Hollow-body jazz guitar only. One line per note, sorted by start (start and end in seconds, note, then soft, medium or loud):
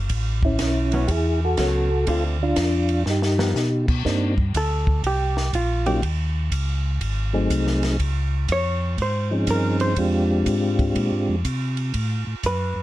0.93 1.08 F#3 medium
0.93 1.08 B3 medium
0.93 1.08 C#4 medium
1.59 1.88 F#3 soft
1.59 1.88 B3 soft
1.59 1.88 C#4 medium
2.08 2.37 D3 medium
2.08 2.37 A3 medium
2.08 2.37 C4 medium
2.08 2.37 F4 medium
3.39 3.54 F3 medium
3.39 3.54 B3 medium
3.39 3.54 D#4 medium
4.57 5.02 A4 medium
5.07 5.51 G4 medium
5.55 5.86 F4 medium
5.86 6.02 G4 medium
8.52 8.97 C#5 loud
9.02 9.46 C5 medium
9.51 9.81 A#4 medium
9.81 9.97 C5 loud
12.46 12.83 B4 medium